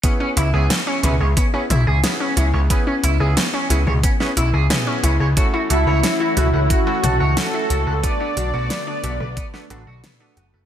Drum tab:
HH |x-x-x-x-x-x-x-x-|x-x-x-x-x-x-x-x-|x-x-x-x-x-x-x-x-|x-x-x-x-x-x-x-x-|
SD |----o-------o---|----o----o--o---|----o-------o---|----o----o--o---|
T2 |------o---o-----|-------o----o---|------o---o-----|-------o----o---|
BD |o-------o-------|o-------o-------|o-------o-------|o-------o-------|